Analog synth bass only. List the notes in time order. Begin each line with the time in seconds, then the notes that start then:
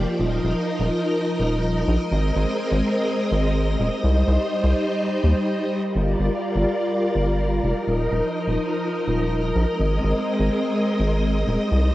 0.20 D#1
0.44 D#1
0.80 D#1
1.40 D#1
1.88 A#1
2.12 G#1
2.36 G#1
2.72 G#1
3.32 G#1
3.80 D#1
4.04 C2
4.28 C2
4.64 C2
5.24 D#2
5.96 G1
6.20 G1
6.56 G1
7.15 G1
7.64 F1
7.88 D#1
8.12 D#1
8.47 D#1
9.08 D#1
9.56 A#1
9.80 G#1
10.04 G#1
10.40 G#1
11.00 G#1
11.48 D#1
11.72 C2